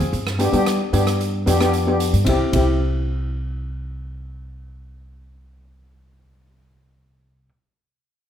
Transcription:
Already playing: C4 F4 G#4
0.00 F2, closed hi-hat
0.13 G2, closed hi-hat
0.27 cross-stick
0.39 B3 D4 G4, closed hi-hat
0.52 G3 B3 D4 G4, closed hi-hat
0.66 cross-stick, closed hi-hat
0.93 G2 B3 D4 G4, closed hi-hat
1.07 cross-stick, closed hi-hat
1.21 closed hi-hat
1.46 F2 B3 D4 G4, closed hi-hat
1.60 B3 D4 G4, cross-stick, closed hi-hat
1.73 closed hi-hat
1.87 B3 D4 G4
2.00 closed hi-hat
2.13 G2, closed hi-hat
2.25 C2 C4 E4, kick, ride
2.29 G4
2.52 C2 C4 E4, kick, ride
2.56 G4

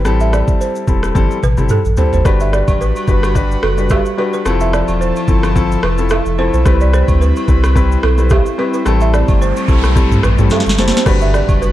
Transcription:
0.05 A1 G3 C4 E4 A4, cross-stick, shaker
0.20 E5, shaker
0.33 D5, cross-stick, shaker
0.48 kick, shaker
0.61 C5, shaker
0.76 shaker
0.87 E1 G3 C4 E4 A4, kick, shaker
1.03 cross-stick, shaker
1.15 G1 G3 C4 E4 A4, kick, high tom, shaker
1.31 shaker
1.43 A1 B4, mid tom, shaker
1.57 G1 G3 C4 E4 A4, mid tom, shaker
1.69 A4, mid tom, shaker
1.85 A1, shaker
1.97 G3 C4 E4 A4 C5, floor tom, shaker
2.13 F#1 C5, floor tom, shaker
2.25 G1 G3 D4 F#4 B4, kick, cross-stick, high agogo, shaker
2.40 E5, shaker
2.53 D5, cross-stick, shaker
2.68 A1, kick, high agogo, shaker
2.81 B4, shaker
2.96 high agogo, shaker
3.08 G1 G3 D4 F#4 B4, kick, shaker
3.23 cross-stick, high agogo, shaker
3.35 G3 D4 F#4 B4, kick, shaker
3.51 shaker
3.63 F#1 A4, cross-stick, high agogo
3.78 G3 D4 F#4 B4, shaker
3.89 G4, kick, cross-stick, high agogo, low woodblock, shaker
4.06 shaker
4.18 G3 D4 F#4 B4, high agogo
4.33 B4, shaker
4.45 F1 F3 C4 E4 A4, cross-stick, high agogo, shaker
4.60 E5, shaker
4.73 D5, cross-stick, shaker
4.88 E1, high agogo, shaker
5.01 C5, shaker
5.16 high agogo, shaker
5.28 G1 F3 C4 E4 A4, kick, shaker
5.43 cross-stick, high agogo, shaker
5.55 F3 C4 E4 A4, kick, shaker
5.72 shaker
5.83 F1 B4, cross-stick, high agogo
5.98 F3 C4 E4 A4, shaker
6.09 A4, cross-stick, high agogo, low woodblock, shaker
6.26 F1, shaker
6.38 F3 C4 E4 A4 C5, high agogo
6.53 B1 C5, shaker
6.65 C2 G3 C4 E4 B4, kick, cross-stick, high agogo, shaker
6.81 D5, shaker
6.93 C5, cross-stick, shaker
7.08 D2, kick, high agogo, shaker
7.21 B4, shaker
7.36 high agogo, shaker
7.48 C2 G3 C4 E4 B4, kick, shaker
7.64 cross-stick, high agogo, shaker
7.75 G3 C4 E4 B4, kick, shaker
7.92 shaker
8.03 B1 A4, cross-stick, high agogo
8.18 G3 C4 E4 B4, shaker
8.30 G4, kick, cross-stick, high agogo, low woodblock, shaker
8.46 shaker
8.58 G3 C4 E4 B4, high agogo
8.74 B4, shaker
8.85 A1 G3 A3 C4 E4 A4, cross-stick, noise sweep, high agogo, shaker
9.01 E5, shaker
9.14 D5, cross-stick, shaker
9.28 G1, kick, high agogo, shaker
9.42 C5, shaker
9.56 high agogo, shaker
9.68 B1 G3 C4 E4 A4, kick, shaker
9.84 cross-stick, high agogo, shaker
9.96 G3 C4 E4 A4, kick, shaker
10.11 mid tom, shaker
10.23 A1 B4, cross-stick, mid tom, high agogo, shaker
10.38 A1 G3 C4 E4 A4, mid tom, shaker
10.50 A4, snare, high agogo, low woodblock, shaker
10.60 snare
10.66 G1, snare, shaker
10.78 F#1 G3 C4 E4 A4 C5, snare, high agogo, shaker
10.88 snare
10.94 C5, snare, shaker
11.06 G1 G3 D4 F#4 B4, kick, cross-stick, crash, impact, high agogo, shaker
11.21 E5, shaker
11.34 D5, cross-stick, shaker
11.49 F#1, kick, high agogo, shaker
11.62 B4, shaker

